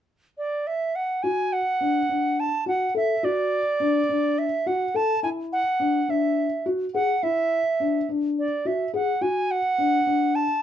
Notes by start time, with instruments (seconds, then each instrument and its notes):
0.38 flute D5
0.67 flute E5
0.95 flute F#5
1.23 felt piano F#4, flute G#5
1.53 flute F#5
1.81 felt piano D4
2.09 felt piano D4
2.40 flute A5
2.66 felt piano F#4, flute F#5
2.95 felt piano A4, flute E5
3.23 felt piano F#4, flute D5
3.80 felt piano D4
4.09 felt piano D4
4.39 flute E5
4.66 felt piano F#4, flute F#5
4.94 felt piano A4, flute A5
5.23 felt piano E4, flute G#5
5.53 flute F#5
5.80 felt piano D4
6.08 felt piano D4, flute E5
6.66 felt piano F#4
6.94 felt piano G#4, flute F#5
7.23 felt piano E4, flute E5
7.80 felt piano D4
8.09 felt piano D4
8.39 flute D5
8.65 felt piano F#4, flute E5
8.94 felt piano G#4, flute F#5
9.21 felt piano F#4, flute G#5
9.51 flute F#5
9.78 felt piano D4
10.07 felt piano D4
10.35 flute A5